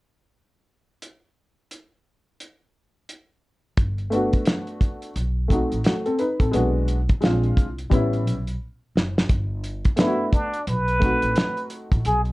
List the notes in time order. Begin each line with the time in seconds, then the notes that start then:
1.02 closed hi-hat
1.71 closed hi-hat
2.40 closed hi-hat
3.09 closed hi-hat
3.78 G1, kick, closed hi-hat
3.98 closed hi-hat
4.10 A3 B3 D4, closed hi-hat
4.15 F#4
4.33 kick, closed hi-hat
4.46 snare, closed hi-hat
4.67 closed hi-hat
4.81 kick, closed hi-hat
5.02 closed hi-hat
5.16 B1, closed hi-hat
5.48 A3 C4 D#4 F#4, kick, closed hi-hat
5.72 A1, closed hi-hat
5.84 A3 F#4, snare, closed hi-hat
6.06 C4 A4, closed hi-hat
6.19 D#4 B4, closed hi-hat
6.40 A1 C4 A4, kick, closed hi-hat
6.51 B1 G#3 B3 D4 F#4, closed hi-hat
6.88 closed hi-hat
7.09 kick, closed hi-hat
7.20 A#1 G#3 C4 D4 F4, snare, closed hi-hat
7.43 closed hi-hat
7.57 C2, kick, closed hi-hat
7.78 closed hi-hat
7.90 A1 G3 B3 C#4 E4, kick, closed hi-hat
8.13 closed hi-hat
8.26 B1, closed hi-hat
8.47 closed hi-hat
8.95 F#1, snare
9.18 snare
9.29 G1, kick, closed hi-hat
9.64 closed hi-hat
9.84 kick, closed hi-hat
9.96 A3 B3 D4 E4, snare, closed hi-hat
10.06 F#4
10.33 D4, kick, closed hi-hat
10.54 closed hi-hat
10.67 B1 B4, closed hi-hat
10.88 closed hi-hat
10.99 A3 C4 D#4, kick, closed hi-hat
11.03 F#4
11.22 A1, closed hi-hat
11.35 snare, closed hi-hat
11.57 closed hi-hat
11.70 closed hi-hat
11.92 A1, kick, closed hi-hat
12.05 B1 G#4, closed hi-hat
12.25 closed hi-hat